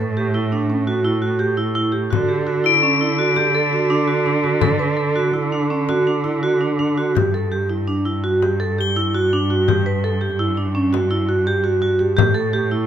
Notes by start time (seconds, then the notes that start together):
Already playing: A2
0.17 G4
0.34 E4
0.52 D4
0.70 C#4
0.87 F#4
1.04 E4
1.22 F#4
1.39 G4
1.57 E4
1.75 E4, frame drum
1.92 G4, frame drum
2.10 D3 F#4, frame drum
2.29 G4
2.47 F#4, frame drum
2.64 E4 D7
2.83 C#4
3.01 E4
3.19 F#4
3.36 G4, frame drum
3.55 A4
3.73 F#4
3.90 D4
4.08 F#4
4.26 D4, frame drum
4.44 F#4, frame drum
4.61 A4, frame drum
4.79 B4
4.97 A4
5.16 F#4
5.34 E4, frame drum
5.52 D4
5.70 C#4
5.89 F#4, frame drum
6.07 D4
6.24 E4, frame drum
6.43 F#4
6.61 D4
6.79 D4, frame drum
6.98 F#4
7.15 G2 G4, frame drum
7.34 A4
7.52 G4, frame drum
7.69 E4
7.87 D4
8.05 E4
8.24 F#4
8.42 G4, frame drum
8.60 A4
8.79 G4 G7
8.96 E4
9.15 F#4
9.32 D4, frame drum
9.50 F#4, frame drum
9.68 G4, frame drum
9.86 B4
10.04 A4, frame drum
10.21 G4
10.39 E4
10.57 D4
10.75 C#4
10.93 F#4, frame drum
11.11 E4
11.29 F#4
11.47 G4
11.64 F#4
11.82 F#4, frame drum
11.99 G4, frame drum
12.17 A2 G4, frame drum
12.34 A4
12.53 G4, frame drum
12.71 E4